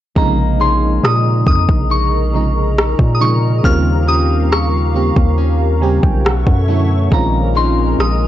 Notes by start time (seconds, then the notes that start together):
0.16 A#1 C3 C#3 F3 G#3 A#3 D#4 G#4 A#4 D#5 A#5, kick
0.60 D#4 G#4 C#5 C6
1.03 A#2 D#6, cross-stick
1.47 F2 D#6, kick
1.69 A#1, kick
1.90 D#4 C#6
2.33 C3 C#3 F3 G#3 D#4
2.79 cross-stick
2.99 A#2, kick
3.15 D#6
3.20 C3 C#3 F3 G#3 D#4 C#6
3.63 D#2 C#3 D#3 G3 A#3 C4 F4 G4 F5 F6, kick
4.07 C#4 G4 D#6
4.52 C#6, cross-stick
4.94 C#3 G3 A#3 C4 G4
5.16 D#2, kick
5.38 C#4
5.81 C#3 G3 A#3 C4 G4 G#5
6.03 B1 G5, kick
6.25 B2 A4 C#5 E5 F#5 C#6, cross-stick
6.47 F#2, kick
6.68 D3 F#3 A3 C#4 E4 C#5
7.11 A#1 A#2 D#3 G#3 C4 C#4 F4 A#4 D#5 A#5, kick
7.55 G#3 C#4 D#4 C6
7.99 A#1 D#6, cross-stick